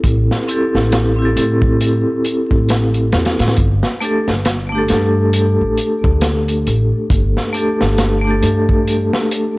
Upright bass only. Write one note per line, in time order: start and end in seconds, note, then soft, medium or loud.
0.04 0.28 A1 medium
0.75 1.33 A1 medium
1.36 2.02 A2 medium
2.51 3.13 A1 loud
3.13 3.37 E2 medium
3.40 3.55 A2 medium
3.58 3.81 G1 loud
4.28 4.87 G1 medium
4.90 5.55 G2 loud
5.61 5.76 A1 medium
6.04 6.63 D2 loud
6.67 6.90 A1 medium
7.10 7.34 G1 loud
7.82 8.40 G1 medium
8.43 9.08 G2 medium